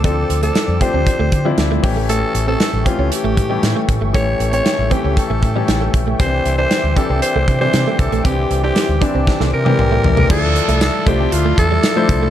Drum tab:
CC |----------------|----------------|----------------|----------------|
HH |x-xxx-x-x-x-x-o-|x-x-x-x-x-x-x-x-|x-xxx-x-x-x-x-x-|x-x-x-x-x-x-x-xx|
TB |----------------|----------------|----------------|----------------|
SD |----o-------o---|----o-------o---|----o-------o---|----o-------o---|
T1 |----------------|----------------|----------------|----------------|
T2 |----------------|----------------|----------------|----------------|
FT |----------------|----------------|----------------|----------------|
BD |o-----o-o-o---o-|------o---o---o-|o-----o-o-o---o-|o-----o---o---o-|

CC |----------------|x---------------|
HH |x-x-x-x---------|--xxx-x-x-x-x-x-|
TB |----------------|----x-------x---|
SD |----o---oo------|----o-------o---|
T1 |-----------o----|----------------|
T2 |------------o---|----------------|
FT |--------------oo|----------------|
BD |o-----o-o-------|o-----o---o---o-|